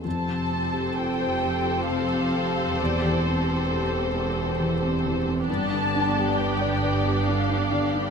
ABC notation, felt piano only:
X:1
M:3/4
L:1/16
Q:1/4=67
K:F
V:1 name="Felt piano"
F,, C, C G A c A G C, C C, C | E,, E, C G A c A G E, C E, C | G,, D, D G =B d B G D, D D, D |]